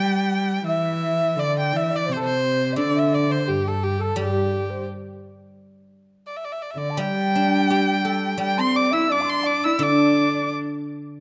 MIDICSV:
0, 0, Header, 1, 5, 480
1, 0, Start_track
1, 0, Tempo, 717703
1, 914, Time_signature, 4, 2, 24, 8
1, 1863, Tempo, 704225
1, 7600, End_track
2, 0, Start_track
2, 0, Title_t, "Erhu"
2, 0, Program_c, 0, 110
2, 0, Note_on_c, 0, 79, 86
2, 430, Note_off_c, 0, 79, 0
2, 447, Note_on_c, 0, 76, 83
2, 935, Note_on_c, 0, 74, 88
2, 945, Note_off_c, 0, 76, 0
2, 1044, Note_off_c, 0, 74, 0
2, 1067, Note_on_c, 0, 79, 78
2, 1181, Note_on_c, 0, 76, 84
2, 1191, Note_off_c, 0, 79, 0
2, 1311, Note_on_c, 0, 74, 79
2, 1321, Note_off_c, 0, 76, 0
2, 1426, Note_on_c, 0, 72, 76
2, 1436, Note_off_c, 0, 74, 0
2, 1446, Note_on_c, 0, 69, 60
2, 1456, Note_off_c, 0, 72, 0
2, 1498, Note_on_c, 0, 72, 78
2, 1508, Note_off_c, 0, 69, 0
2, 1858, Note_off_c, 0, 72, 0
2, 1862, Note_on_c, 0, 74, 78
2, 2000, Note_on_c, 0, 76, 76
2, 2010, Note_off_c, 0, 74, 0
2, 2107, Note_on_c, 0, 74, 77
2, 2117, Note_off_c, 0, 76, 0
2, 2224, Note_on_c, 0, 72, 72
2, 2234, Note_off_c, 0, 74, 0
2, 2340, Note_on_c, 0, 67, 73
2, 2350, Note_off_c, 0, 72, 0
2, 2471, Note_on_c, 0, 69, 68
2, 2481, Note_off_c, 0, 67, 0
2, 2576, Note_on_c, 0, 67, 71
2, 2587, Note_off_c, 0, 69, 0
2, 2701, Note_on_c, 0, 69, 69
2, 2711, Note_off_c, 0, 67, 0
2, 2819, Note_off_c, 0, 69, 0
2, 2828, Note_on_c, 0, 67, 69
2, 3272, Note_off_c, 0, 67, 0
2, 4236, Note_on_c, 0, 74, 56
2, 4301, Note_on_c, 0, 76, 60
2, 4311, Note_off_c, 0, 74, 0
2, 4359, Note_on_c, 0, 74, 62
2, 4369, Note_off_c, 0, 76, 0
2, 4409, Note_on_c, 0, 76, 59
2, 4420, Note_off_c, 0, 74, 0
2, 4478, Note_on_c, 0, 74, 58
2, 4488, Note_off_c, 0, 76, 0
2, 4535, Note_on_c, 0, 76, 56
2, 4545, Note_off_c, 0, 74, 0
2, 4585, Note_on_c, 0, 74, 69
2, 4595, Note_off_c, 0, 76, 0
2, 4738, Note_on_c, 0, 79, 86
2, 4748, Note_off_c, 0, 74, 0
2, 5691, Note_off_c, 0, 79, 0
2, 5700, Note_on_c, 0, 79, 83
2, 5828, Note_on_c, 0, 84, 84
2, 5838, Note_off_c, 0, 79, 0
2, 5934, Note_on_c, 0, 86, 85
2, 5945, Note_off_c, 0, 84, 0
2, 6050, Note_on_c, 0, 88, 85
2, 6061, Note_off_c, 0, 86, 0
2, 6179, Note_on_c, 0, 86, 86
2, 6190, Note_off_c, 0, 88, 0
2, 6301, Note_on_c, 0, 84, 82
2, 6311, Note_off_c, 0, 86, 0
2, 6414, Note_on_c, 0, 86, 85
2, 6425, Note_off_c, 0, 84, 0
2, 6534, Note_on_c, 0, 88, 83
2, 6544, Note_off_c, 0, 86, 0
2, 6664, Note_on_c, 0, 86, 84
2, 6674, Note_off_c, 0, 88, 0
2, 7144, Note_off_c, 0, 86, 0
2, 7600, End_track
3, 0, Start_track
3, 0, Title_t, "Xiao"
3, 0, Program_c, 1, 77
3, 0, Note_on_c, 1, 79, 76
3, 240, Note_off_c, 1, 79, 0
3, 438, Note_on_c, 1, 76, 80
3, 891, Note_off_c, 1, 76, 0
3, 920, Note_on_c, 1, 74, 72
3, 1222, Note_off_c, 1, 74, 0
3, 1245, Note_on_c, 1, 76, 52
3, 1271, Note_on_c, 1, 74, 68
3, 1281, Note_off_c, 1, 76, 0
3, 1378, Note_on_c, 1, 72, 66
3, 1388, Note_off_c, 1, 74, 0
3, 1467, Note_off_c, 1, 72, 0
3, 1471, Note_on_c, 1, 72, 73
3, 1825, Note_on_c, 1, 76, 51
3, 1835, Note_off_c, 1, 72, 0
3, 1842, Note_on_c, 1, 74, 72
3, 1852, Note_off_c, 1, 76, 0
3, 1973, Note_off_c, 1, 74, 0
3, 1978, Note_on_c, 1, 76, 68
3, 2099, Note_on_c, 1, 74, 64
3, 2110, Note_off_c, 1, 76, 0
3, 2213, Note_on_c, 1, 72, 66
3, 2224, Note_off_c, 1, 74, 0
3, 2321, Note_off_c, 1, 72, 0
3, 2325, Note_on_c, 1, 67, 65
3, 2554, Note_off_c, 1, 67, 0
3, 2577, Note_on_c, 1, 67, 61
3, 2689, Note_on_c, 1, 69, 62
3, 2699, Note_off_c, 1, 67, 0
3, 2803, Note_on_c, 1, 67, 61
3, 2813, Note_off_c, 1, 69, 0
3, 3169, Note_on_c, 1, 72, 55
3, 3179, Note_off_c, 1, 67, 0
3, 3291, Note_off_c, 1, 72, 0
3, 4573, Note_on_c, 1, 74, 61
3, 4669, Note_on_c, 1, 81, 53
3, 4679, Note_off_c, 1, 74, 0
3, 4724, Note_on_c, 1, 79, 79
3, 4734, Note_off_c, 1, 81, 0
3, 5679, Note_off_c, 1, 79, 0
3, 5683, Note_on_c, 1, 79, 76
3, 5811, Note_on_c, 1, 84, 75
3, 5821, Note_off_c, 1, 79, 0
3, 5921, Note_off_c, 1, 84, 0
3, 5925, Note_on_c, 1, 74, 66
3, 6039, Note_on_c, 1, 76, 69
3, 6049, Note_off_c, 1, 74, 0
3, 6167, Note_on_c, 1, 74, 72
3, 6177, Note_off_c, 1, 76, 0
3, 6246, Note_on_c, 1, 86, 53
3, 6256, Note_off_c, 1, 74, 0
3, 6271, Note_on_c, 1, 84, 75
3, 6281, Note_off_c, 1, 86, 0
3, 6396, Note_on_c, 1, 74, 65
3, 6406, Note_off_c, 1, 84, 0
3, 6636, Note_off_c, 1, 74, 0
3, 6640, Note_on_c, 1, 74, 66
3, 6985, Note_off_c, 1, 74, 0
3, 7011, Note_on_c, 1, 74, 54
3, 7127, Note_off_c, 1, 74, 0
3, 7600, End_track
4, 0, Start_track
4, 0, Title_t, "Guzheng"
4, 0, Program_c, 2, 107
4, 1848, Note_on_c, 2, 50, 51
4, 2799, Note_on_c, 2, 55, 57
4, 3286, Note_off_c, 2, 50, 0
4, 4238, Note_off_c, 2, 55, 0
4, 4717, Note_on_c, 2, 55, 57
4, 4977, Note_on_c, 2, 62, 43
4, 5214, Note_on_c, 2, 67, 48
4, 5449, Note_on_c, 2, 69, 42
4, 5665, Note_off_c, 2, 55, 0
4, 5673, Note_on_c, 2, 55, 56
4, 5931, Note_off_c, 2, 62, 0
4, 6171, Note_off_c, 2, 67, 0
4, 6410, Note_off_c, 2, 69, 0
4, 6636, Note_on_c, 2, 50, 60
4, 7131, Note_off_c, 2, 55, 0
4, 7600, Note_off_c, 2, 50, 0
4, 7600, End_track
5, 0, Start_track
5, 0, Title_t, "Cello"
5, 0, Program_c, 3, 42
5, 0, Note_on_c, 3, 55, 75
5, 428, Note_off_c, 3, 55, 0
5, 433, Note_on_c, 3, 52, 80
5, 910, Note_on_c, 3, 50, 72
5, 920, Note_off_c, 3, 52, 0
5, 1154, Note_on_c, 3, 52, 75
5, 1164, Note_off_c, 3, 50, 0
5, 1396, Note_on_c, 3, 48, 66
5, 1406, Note_off_c, 3, 52, 0
5, 1472, Note_off_c, 3, 48, 0
5, 1476, Note_on_c, 3, 48, 74
5, 1861, Note_on_c, 3, 50, 76
5, 1871, Note_off_c, 3, 48, 0
5, 2338, Note_on_c, 3, 43, 64
5, 2349, Note_off_c, 3, 50, 0
5, 2810, Note_off_c, 3, 43, 0
5, 2814, Note_on_c, 3, 43, 62
5, 3264, Note_off_c, 3, 43, 0
5, 4568, Note_on_c, 3, 50, 60
5, 4718, Note_on_c, 3, 55, 77
5, 4729, Note_off_c, 3, 50, 0
5, 5681, Note_off_c, 3, 55, 0
5, 5687, Note_on_c, 3, 55, 76
5, 5812, Note_on_c, 3, 60, 78
5, 5822, Note_off_c, 3, 55, 0
5, 6053, Note_on_c, 3, 64, 79
5, 6064, Note_off_c, 3, 60, 0
5, 6171, Note_off_c, 3, 64, 0
5, 6177, Note_on_c, 3, 62, 78
5, 6544, Note_on_c, 3, 64, 72
5, 6554, Note_off_c, 3, 62, 0
5, 6661, Note_on_c, 3, 62, 76
5, 6671, Note_off_c, 3, 64, 0
5, 7143, Note_off_c, 3, 62, 0
5, 7600, End_track
0, 0, End_of_file